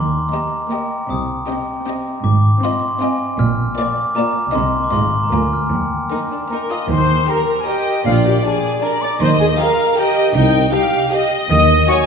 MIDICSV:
0, 0, Header, 1, 9, 480
1, 0, Start_track
1, 0, Key_signature, -3, "major"
1, 0, Tempo, 385604
1, 1363, Time_signature, 3, 2, 24, 8
1, 15014, End_track
2, 0, Start_track
2, 0, Title_t, "Glockenspiel"
2, 0, Program_c, 0, 9
2, 0, Note_on_c, 0, 84, 57
2, 373, Note_off_c, 0, 84, 0
2, 407, Note_on_c, 0, 82, 57
2, 852, Note_off_c, 0, 82, 0
2, 886, Note_on_c, 0, 79, 55
2, 1330, Note_off_c, 0, 79, 0
2, 1371, Note_on_c, 0, 87, 58
2, 1811, Note_off_c, 0, 87, 0
2, 1842, Note_on_c, 0, 79, 58
2, 2283, Note_off_c, 0, 79, 0
2, 2787, Note_on_c, 0, 86, 71
2, 3234, Note_off_c, 0, 86, 0
2, 3276, Note_on_c, 0, 84, 61
2, 3718, Note_off_c, 0, 84, 0
2, 3758, Note_on_c, 0, 80, 75
2, 4198, Note_off_c, 0, 80, 0
2, 4222, Note_on_c, 0, 89, 81
2, 4670, Note_off_c, 0, 89, 0
2, 4711, Note_on_c, 0, 86, 84
2, 5155, Note_off_c, 0, 86, 0
2, 5179, Note_on_c, 0, 82, 73
2, 5630, Note_off_c, 0, 82, 0
2, 5664, Note_on_c, 0, 84, 76
2, 6003, Note_off_c, 0, 84, 0
2, 6024, Note_on_c, 0, 86, 62
2, 6129, Note_on_c, 0, 84, 66
2, 6139, Note_off_c, 0, 86, 0
2, 6477, Note_off_c, 0, 84, 0
2, 6516, Note_on_c, 0, 82, 58
2, 6628, Note_off_c, 0, 82, 0
2, 6642, Note_on_c, 0, 80, 61
2, 6865, Note_off_c, 0, 80, 0
2, 6888, Note_on_c, 0, 89, 56
2, 7111, Note_off_c, 0, 89, 0
2, 7137, Note_on_c, 0, 79, 48
2, 8302, Note_off_c, 0, 79, 0
2, 15014, End_track
3, 0, Start_track
3, 0, Title_t, "Flute"
3, 0, Program_c, 1, 73
3, 8093, Note_on_c, 1, 82, 59
3, 8168, Note_off_c, 1, 82, 0
3, 8343, Note_on_c, 1, 87, 51
3, 8418, Note_off_c, 1, 87, 0
3, 8588, Note_on_c, 1, 84, 80
3, 9085, Note_on_c, 1, 82, 64
3, 9104, Note_off_c, 1, 84, 0
3, 9464, Note_on_c, 1, 80, 51
3, 9483, Note_off_c, 1, 82, 0
3, 9539, Note_on_c, 1, 79, 70
3, 9558, Note_off_c, 1, 80, 0
3, 10015, Note_off_c, 1, 79, 0
3, 10023, Note_on_c, 1, 77, 73
3, 10097, Note_off_c, 1, 77, 0
3, 10282, Note_on_c, 1, 79, 60
3, 10512, Note_off_c, 1, 79, 0
3, 10520, Note_on_c, 1, 80, 69
3, 10987, Note_on_c, 1, 82, 80
3, 11006, Note_off_c, 1, 80, 0
3, 11224, Note_on_c, 1, 86, 76
3, 11242, Note_off_c, 1, 82, 0
3, 11460, Note_on_c, 1, 84, 90
3, 11479, Note_off_c, 1, 86, 0
3, 11689, Note_off_c, 1, 84, 0
3, 11696, Note_on_c, 1, 80, 61
3, 11771, Note_off_c, 1, 80, 0
3, 11944, Note_on_c, 1, 82, 79
3, 12412, Note_off_c, 1, 82, 0
3, 12423, Note_on_c, 1, 79, 84
3, 12887, Note_off_c, 1, 79, 0
3, 12894, Note_on_c, 1, 75, 88
3, 13364, Note_off_c, 1, 75, 0
3, 13375, Note_on_c, 1, 79, 75
3, 13844, Note_off_c, 1, 79, 0
3, 14306, Note_on_c, 1, 87, 96
3, 14763, Note_off_c, 1, 87, 0
3, 14793, Note_on_c, 1, 85, 89
3, 14868, Note_off_c, 1, 85, 0
3, 15014, End_track
4, 0, Start_track
4, 0, Title_t, "Violin section"
4, 0, Program_c, 2, 48
4, 422, Note_on_c, 2, 75, 42
4, 772, Note_off_c, 2, 75, 0
4, 898, Note_on_c, 2, 75, 44
4, 1247, Note_off_c, 2, 75, 0
4, 1854, Note_on_c, 2, 75, 46
4, 2201, Note_off_c, 2, 75, 0
4, 2337, Note_on_c, 2, 75, 50
4, 2680, Note_off_c, 2, 75, 0
4, 3297, Note_on_c, 2, 75, 60
4, 3641, Note_off_c, 2, 75, 0
4, 3760, Note_on_c, 2, 75, 55
4, 4110, Note_off_c, 2, 75, 0
4, 4714, Note_on_c, 2, 74, 60
4, 5067, Note_off_c, 2, 74, 0
4, 5201, Note_on_c, 2, 74, 52
4, 5552, Note_off_c, 2, 74, 0
4, 5644, Note_on_c, 2, 75, 57
4, 6015, Note_off_c, 2, 75, 0
4, 6147, Note_on_c, 2, 75, 52
4, 6509, Note_off_c, 2, 75, 0
4, 6621, Note_on_c, 2, 70, 45
4, 6990, Note_off_c, 2, 70, 0
4, 7615, Note_on_c, 2, 70, 42
4, 7977, Note_off_c, 2, 70, 0
4, 8100, Note_on_c, 2, 70, 37
4, 8464, Note_off_c, 2, 70, 0
4, 9060, Note_on_c, 2, 67, 51
4, 9424, Note_off_c, 2, 67, 0
4, 9560, Note_on_c, 2, 67, 43
4, 9913, Note_off_c, 2, 67, 0
4, 10512, Note_on_c, 2, 62, 51
4, 10868, Note_off_c, 2, 62, 0
4, 10985, Note_on_c, 2, 62, 53
4, 11343, Note_off_c, 2, 62, 0
4, 11923, Note_on_c, 2, 67, 57
4, 12288, Note_off_c, 2, 67, 0
4, 12410, Note_on_c, 2, 67, 56
4, 12770, Note_off_c, 2, 67, 0
4, 13361, Note_on_c, 2, 67, 63
4, 13724, Note_off_c, 2, 67, 0
4, 13844, Note_on_c, 2, 67, 59
4, 14205, Note_off_c, 2, 67, 0
4, 14827, Note_on_c, 2, 66, 68
4, 15014, Note_off_c, 2, 66, 0
4, 15014, End_track
5, 0, Start_track
5, 0, Title_t, "Viola section"
5, 0, Program_c, 3, 48
5, 412, Note_on_c, 3, 58, 42
5, 766, Note_off_c, 3, 58, 0
5, 883, Note_on_c, 3, 58, 47
5, 1239, Note_off_c, 3, 58, 0
5, 1862, Note_on_c, 3, 60, 48
5, 2206, Note_off_c, 3, 60, 0
5, 2328, Note_on_c, 3, 60, 50
5, 2676, Note_off_c, 3, 60, 0
5, 3274, Note_on_c, 3, 60, 51
5, 3629, Note_off_c, 3, 60, 0
5, 3766, Note_on_c, 3, 60, 55
5, 4113, Note_off_c, 3, 60, 0
5, 4719, Note_on_c, 3, 58, 55
5, 5070, Note_off_c, 3, 58, 0
5, 5191, Note_on_c, 3, 58, 53
5, 5547, Note_off_c, 3, 58, 0
5, 5687, Note_on_c, 3, 58, 52
5, 6038, Note_off_c, 3, 58, 0
5, 6162, Note_on_c, 3, 56, 49
5, 6517, Note_off_c, 3, 56, 0
5, 6650, Note_on_c, 3, 58, 43
5, 7005, Note_off_c, 3, 58, 0
5, 7629, Note_on_c, 3, 58, 38
5, 7984, Note_off_c, 3, 58, 0
5, 8116, Note_on_c, 3, 58, 34
5, 8121, Note_on_c, 3, 70, 44
5, 8339, Note_off_c, 3, 70, 0
5, 8360, Note_on_c, 3, 75, 44
5, 8472, Note_off_c, 3, 58, 0
5, 8596, Note_off_c, 3, 75, 0
5, 8608, Note_on_c, 3, 72, 66
5, 9071, Note_off_c, 3, 72, 0
5, 9088, Note_on_c, 3, 70, 49
5, 9552, Note_off_c, 3, 70, 0
5, 9567, Note_on_c, 3, 67, 58
5, 10030, Note_off_c, 3, 67, 0
5, 10042, Note_on_c, 3, 65, 63
5, 10272, Note_off_c, 3, 65, 0
5, 10285, Note_on_c, 3, 67, 64
5, 10378, Note_off_c, 3, 67, 0
5, 10534, Note_on_c, 3, 68, 57
5, 10993, Note_off_c, 3, 68, 0
5, 10993, Note_on_c, 3, 70, 67
5, 11088, Note_off_c, 3, 70, 0
5, 11238, Note_on_c, 3, 74, 56
5, 11332, Note_off_c, 3, 74, 0
5, 11484, Note_on_c, 3, 72, 67
5, 11576, Note_off_c, 3, 72, 0
5, 11712, Note_on_c, 3, 68, 68
5, 11806, Note_off_c, 3, 68, 0
5, 11945, Note_on_c, 3, 70, 69
5, 12413, Note_off_c, 3, 70, 0
5, 12417, Note_on_c, 3, 67, 72
5, 12880, Note_on_c, 3, 63, 63
5, 12897, Note_off_c, 3, 67, 0
5, 13357, Note_off_c, 3, 63, 0
5, 13362, Note_on_c, 3, 67, 61
5, 13838, Note_off_c, 3, 67, 0
5, 14328, Note_on_c, 3, 75, 76
5, 14775, Note_off_c, 3, 75, 0
5, 14805, Note_on_c, 3, 73, 78
5, 15014, Note_off_c, 3, 73, 0
5, 15014, End_track
6, 0, Start_track
6, 0, Title_t, "Violin section"
6, 0, Program_c, 4, 48
6, 423, Note_on_c, 4, 67, 43
6, 772, Note_off_c, 4, 67, 0
6, 897, Note_on_c, 4, 67, 45
6, 1247, Note_off_c, 4, 67, 0
6, 1841, Note_on_c, 4, 67, 45
6, 2194, Note_off_c, 4, 67, 0
6, 2317, Note_on_c, 4, 67, 53
6, 2670, Note_off_c, 4, 67, 0
6, 3282, Note_on_c, 4, 65, 56
6, 3633, Note_off_c, 4, 65, 0
6, 3750, Note_on_c, 4, 65, 57
6, 4105, Note_off_c, 4, 65, 0
6, 4700, Note_on_c, 4, 65, 56
6, 5060, Note_off_c, 4, 65, 0
6, 5193, Note_on_c, 4, 65, 61
6, 5548, Note_off_c, 4, 65, 0
6, 5671, Note_on_c, 4, 63, 58
6, 6029, Note_off_c, 4, 63, 0
6, 6149, Note_on_c, 4, 65, 49
6, 6510, Note_off_c, 4, 65, 0
6, 6634, Note_on_c, 4, 65, 53
6, 6997, Note_off_c, 4, 65, 0
6, 7610, Note_on_c, 4, 63, 47
6, 7709, Note_off_c, 4, 63, 0
6, 7864, Note_on_c, 4, 62, 37
6, 7960, Note_off_c, 4, 62, 0
6, 8116, Note_on_c, 4, 63, 49
6, 8211, Note_off_c, 4, 63, 0
6, 8340, Note_on_c, 4, 65, 39
6, 8438, Note_off_c, 4, 65, 0
6, 9067, Note_on_c, 4, 70, 49
6, 9517, Note_off_c, 4, 70, 0
6, 9532, Note_on_c, 4, 75, 57
6, 10022, Note_off_c, 4, 75, 0
6, 10028, Note_on_c, 4, 74, 65
6, 10970, Note_off_c, 4, 74, 0
6, 10993, Note_on_c, 4, 74, 62
6, 11460, Note_off_c, 4, 74, 0
6, 11464, Note_on_c, 4, 75, 69
6, 11933, Note_off_c, 4, 75, 0
6, 11951, Note_on_c, 4, 77, 64
6, 12425, Note_off_c, 4, 77, 0
6, 12427, Note_on_c, 4, 75, 72
6, 12888, Note_on_c, 4, 79, 78
6, 12892, Note_off_c, 4, 75, 0
6, 13361, Note_off_c, 4, 79, 0
6, 13369, Note_on_c, 4, 77, 67
6, 13841, Note_off_c, 4, 77, 0
6, 13848, Note_on_c, 4, 75, 77
6, 14789, Note_off_c, 4, 75, 0
6, 14802, Note_on_c, 4, 80, 70
6, 15014, Note_off_c, 4, 80, 0
6, 15014, End_track
7, 0, Start_track
7, 0, Title_t, "Cello section"
7, 0, Program_c, 5, 48
7, 0, Note_on_c, 5, 51, 54
7, 305, Note_off_c, 5, 51, 0
7, 1362, Note_on_c, 5, 48, 55
7, 1740, Note_off_c, 5, 48, 0
7, 2788, Note_on_c, 5, 44, 61
7, 3167, Note_off_c, 5, 44, 0
7, 4223, Note_on_c, 5, 46, 65
7, 4603, Note_off_c, 5, 46, 0
7, 5663, Note_on_c, 5, 48, 65
7, 6047, Note_off_c, 5, 48, 0
7, 6157, Note_on_c, 5, 44, 60
7, 6537, Note_off_c, 5, 44, 0
7, 6629, Note_on_c, 5, 38, 54
7, 7017, Note_off_c, 5, 38, 0
7, 7122, Note_on_c, 5, 39, 46
7, 7510, Note_off_c, 5, 39, 0
7, 8594, Note_on_c, 5, 51, 60
7, 8973, Note_off_c, 5, 51, 0
7, 10035, Note_on_c, 5, 46, 65
7, 10413, Note_off_c, 5, 46, 0
7, 11465, Note_on_c, 5, 51, 66
7, 11843, Note_off_c, 5, 51, 0
7, 12886, Note_on_c, 5, 48, 76
7, 13269, Note_off_c, 5, 48, 0
7, 14315, Note_on_c, 5, 51, 74
7, 14702, Note_off_c, 5, 51, 0
7, 15014, End_track
8, 0, Start_track
8, 0, Title_t, "Tuba"
8, 0, Program_c, 6, 58
8, 8590, Note_on_c, 6, 39, 57
8, 8970, Note_off_c, 6, 39, 0
8, 10029, Note_on_c, 6, 34, 58
8, 10410, Note_off_c, 6, 34, 0
8, 11463, Note_on_c, 6, 39, 64
8, 11842, Note_off_c, 6, 39, 0
8, 12897, Note_on_c, 6, 36, 71
8, 13275, Note_off_c, 6, 36, 0
8, 14327, Note_on_c, 6, 39, 68
8, 14708, Note_off_c, 6, 39, 0
8, 15014, End_track
9, 0, Start_track
9, 0, Title_t, "Double bass section"
9, 0, Program_c, 7, 48
9, 0, Note_on_c, 7, 39, 45
9, 312, Note_off_c, 7, 39, 0
9, 1377, Note_on_c, 7, 36, 54
9, 1747, Note_off_c, 7, 36, 0
9, 2801, Note_on_c, 7, 32, 61
9, 3174, Note_off_c, 7, 32, 0
9, 4229, Note_on_c, 7, 34, 61
9, 4607, Note_off_c, 7, 34, 0
9, 5667, Note_on_c, 7, 36, 56
9, 6049, Note_off_c, 7, 36, 0
9, 6149, Note_on_c, 7, 32, 60
9, 6532, Note_off_c, 7, 32, 0
9, 6639, Note_on_c, 7, 38, 48
9, 7022, Note_off_c, 7, 38, 0
9, 7131, Note_on_c, 7, 39, 46
9, 7514, Note_off_c, 7, 39, 0
9, 8587, Note_on_c, 7, 39, 58
9, 8969, Note_off_c, 7, 39, 0
9, 10036, Note_on_c, 7, 34, 60
9, 10413, Note_off_c, 7, 34, 0
9, 11457, Note_on_c, 7, 39, 63
9, 11839, Note_off_c, 7, 39, 0
9, 12894, Note_on_c, 7, 36, 71
9, 13273, Note_off_c, 7, 36, 0
9, 14328, Note_on_c, 7, 39, 70
9, 14709, Note_off_c, 7, 39, 0
9, 15014, End_track
0, 0, End_of_file